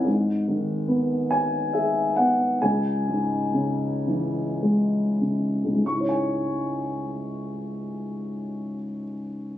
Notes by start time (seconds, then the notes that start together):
0.05 G#2
0.48 D#3
0.88 B3
1.31 G#5
1.73 G#4 E5
2.16 B3 F#5
2.62 C#2 G#5
3.08 G#2
3.54 C#3
4.07 E3
4.63 G#3
5.21 C#3
5.64 C#2
5.73 G#2
5.82 G#3 C#6
5.91 E4
6.00 C#5
6.09 G#5